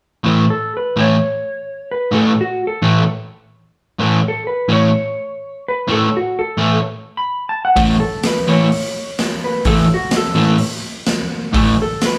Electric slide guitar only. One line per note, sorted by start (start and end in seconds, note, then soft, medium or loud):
0.50 0.72 A4 medium
0.77 0.97 B4 medium
1.00 1.89 C#5 medium
1.91 2.13 B4 medium
2.15 2.37 A4 medium
2.41 2.61 F#4 medium
2.67 3.09 A4 medium
4.28 4.47 A4 loud
4.47 4.70 B4 medium
4.72 5.63 C#5 medium
5.68 5.90 B4 medium
5.92 6.13 A4 medium
6.17 6.37 F#4 medium
6.39 6.83 A4 loud
7.17 7.46 B5 medium
7.49 7.63 A5 medium
7.65 7.78 F#5 loud
8.00 8.23 A4 medium
8.26 8.48 B4 medium
8.49 9.40 C#5 medium
9.44 9.66 B4 medium
9.67 9.90 A4 loud
9.94 10.15 F#4 medium
10.17 10.61 A4 loud
11.82 12.04 A4 loud
12.06 12.18 B4 medium